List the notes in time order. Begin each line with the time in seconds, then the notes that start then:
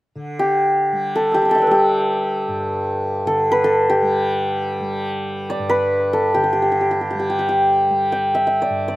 0.15 D3
0.39 G4
0.92 G3
1.15 A4
1.32 G4 E6
1.36 D6
1.42 A5 B5
1.49 A4 G5
1.55 D5 E5
1.62 B4
1.67 G3 A4
1.71 G4
2.48 G2
3.26 D3 A4
3.52 B4
3.64 A4
3.90 G4
4.02 G3
4.80 G3
5.50 D5
5.59 G2
5.69 B4
6.13 A4
6.34 D3 G4
6.44 G4
6.53 G4
6.62 G4
6.72 G4
6.81 G4
6.91 G4
7.01 G4
7.11 G3 G4
7.19 G4
7.30 G4
7.39 G4
7.49 G4
7.90 G3
8.12 G5
8.35 E5
8.47 E5
8.62 D5
8.70 G2
8.88 D5